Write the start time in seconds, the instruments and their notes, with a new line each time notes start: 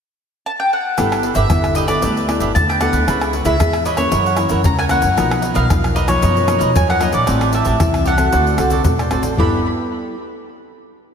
0.46 mandolin A5
0.60 mandolin G5
0.73 mandolin F#5
0.98 upright bass G1, nylon-string guitar G3 B3 E4 A4, cavaquinho D4 G4 B4 E5, pandeiro, tamborim, shaker, surdo
1.12 pandeiro, tamborim, shaker
1.23 cavaquinho D4 G4 B4 E5, pandeiro
1.35 upright bass G1, cavaquinho D4 G4 B4 E5, mandolin E5, pandeiro, shaker, surdo
1.50 upright bass G1, nylon-string guitar D3 B3 E4 A4, pandeiro, tamborim, shaker, surdo
1.64 pandeiro, tamborim, shaker
1.75 cavaquinho D4 G4 B4 E5, mandolin D#5, pandeiro, shaker
1.88 nylon-string guitar B3 E4 A4, cavaquinho G4 B4 E5, mandolin D5, pandeiro, tamborim, shaker, surdo
2.02 upright bass D2, nylon-string guitar G3, cavaquinho D4 G4 B4 E5, pandeiro, shaker, surdo
2.17 cavaquinho G4 B4 E5, pandeiro, shaker
2.28 nylon-string guitar B3 E4 A4, cavaquinho D4 G4 B4 E5, pandeiro, tamborim
2.40 upright bass G1, cavaquinho D4 G4 B4 E5, pandeiro, shaker, surdo
2.55 upright bass D2, nylon-string guitar D3, mandolin A5, pandeiro, shaker, surdo
2.69 cavaquinho G4 B4 E5, mandolin G5, pandeiro, tamborim, shaker
2.81 nylon-string guitar B3 E4 A4, cavaquinho D4 G4 B4 E5, mandolin F#5, pandeiro, tamborim, shaker
2.93 upright bass D2, cavaquinho G4 B4 E5, pandeiro, shaker, surdo
3.08 upright bass C#2, nylon-string guitar C#3 B3 E4 G#4, cavaquinho E4 B4 C#5 E5, pandeiro, tamborim, shaker, surdo
3.21 pandeiro, tamborim, shaker
3.33 cavaquinho E4 B4 C#5 E5, pandeiro
3.45 upright bass C#2, nylon-string guitar B3 E4 G#4, cavaquinho E4 B4 C#5 E5, mandolin E5, pandeiro, shaker, surdo
3.60 upright bass E2, nylon-string guitar G#2 B3 E4 G#4, pandeiro, tamborim, shaker, surdo
3.73 pandeiro, tamborim, shaker
3.85 cavaquinho E4 B4 C#5 E5, mandolin D#5, pandeiro, shaker, surdo
3.97 nylon-string guitar E3 A#3 C#4, cavaquinho B4 C#5 E5, mandolin C#5, pandeiro, tamborim, shaker, surdo
4.12 nylon-string guitar F#2, upright bass F#2, cavaquinho E4 A#4 C#5 F#5, pandeiro, shaker, surdo
4.26 cavaquinho A#4 C#5 F#5, pandeiro, shaker
4.37 nylon-string guitar E3 A#3 C#4, cavaquinho E4 A#4 C#5 F#5, pandeiro, tamborim, shaker
4.49 upright bass F#2, cavaquinho E4 A#4 C#5 F#5, pandeiro, shaker, surdo
4.64 upright bass C#2, nylon-string guitar C#3, mandolin A#5, pandeiro, shaker, surdo
4.79 cavaquinho A#4 C#5 F#5, mandolin G#5, pandeiro, tamborim, shaker
4.89 nylon-string guitar E3 A#3 C#4, cavaquinho E4 A#4 C#5 F#5, mandolin F#5, pandeiro, tamborim, shaker
5.02 upright bass F#2, cavaquinho A#4 C#5 F#5, pandeiro, shaker, surdo
5.16 upright bass B1, nylon-string guitar B2 F3 A#3 D#4, cavaquinho D#4 A#4 B4 D#5, pandeiro, tamborim, shaker, surdo
5.31 pandeiro, tamborim, shaker
5.42 cavaquinho D#4 A#4 B4 D#5, pandeiro
5.54 upright bass B1, cavaquinho D#4 A#4 B4 D#5, mandolin F5, pandeiro, shaker, surdo
5.70 upright bass B1, nylon-string guitar F#2 F3 A#3 D#4, pandeiro, tamborim, shaker, surdo
5.84 pandeiro, tamborim, shaker
5.95 cavaquinho D#4 A#4 B4 D#5, mandolin D#5, pandeiro, surdo
6.07 nylon-string guitar F3 A#3 D#4, cavaquinho A#4 B4 D#5, mandolin C#5, pandeiro, tamborim, shaker, surdo
6.22 upright bass F#2, nylon-string guitar B2, cavaquinho D#4 A#4 B4 D#5, pandeiro, shaker, surdo
6.36 cavaquinho A#4 B4 D#5, pandeiro, shaker
6.47 nylon-string guitar F3 A#3 D#4, cavaquinho D#4 A#4 B4 D#5, pandeiro, tamborim, shaker
6.59 upright bass B1, cavaquinho D#4 A#4 B4 D#5, pandeiro, shaker, surdo
6.75 nylon-string guitar F#2, upright bass F#2, mandolin G#5, pandeiro, shaker, surdo
6.88 cavaquinho A#4 B4 D#5, mandolin F#5, pandeiro, tamborim, shaker
6.99 nylon-string guitar F3 A#3 D#4, cavaquinho D#4 A#4 B4 D#5, mandolin D#5, pandeiro, tamborim
7.12 upright bass A#1, cavaquinho A#4 B4 D#5, mandolin D5, pandeiro, shaker, surdo
7.26 upright bass A1, nylon-string guitar A2 G3 C4 E4, cavaquinho G4 C5 E5 A5, pandeiro, tamborim, shaker, surdo
7.41 pandeiro, tamborim, shaker
7.53 cavaquinho G4 C5 E5 A5, mandolin E5, pandeiro, shaker
7.65 upright bass A1, cavaquinho G4 C5 E5 A5, pandeiro, shaker, surdo
7.80 upright bass C2, nylon-string guitar E3 G3 C4 E4, pandeiro, tamborim, shaker, surdo
7.94 pandeiro, tamborim, shaker
8.05 cavaquinho G4 C5 E5 A5, mandolin F#5, pandeiro
8.18 nylon-string guitar C4 F#4 A4, cavaquinho C5 E5 A5, pandeiro, tamborim, shaker, surdo
8.32 upright bass D2, nylon-string guitar D3, cavaquinho F#4 A4 C5 D5, pandeiro, shaker, surdo
8.46 cavaquinho A4 C5 D5, pandeiro, shaker
8.58 upright bass C2, nylon-string guitar C4 F#4 A4, cavaquinho F#4 A4 C5 D5, pandeiro, tamborim, shaker
8.70 cavaquinho F#4 A4 C5 D5, pandeiro, shaker, surdo
8.84 upright bass B1, nylon-string guitar A2, pandeiro, shaker, surdo
8.99 cavaquinho A4 C5 D5, pandeiro, tamborim, shaker
9.11 upright bass A1, nylon-string guitar C4 F#4 A4, cavaquinho F#4 A4 C5 D5, pandeiro, tamborim
9.23 cavaquinho A4 C5 D5, pandeiro, shaker, surdo
9.37 upright bass G1, nylon-string guitar G3 B3 E4 A4, cavaquinho D4 G4 B4 E5, mandolin B5, surdo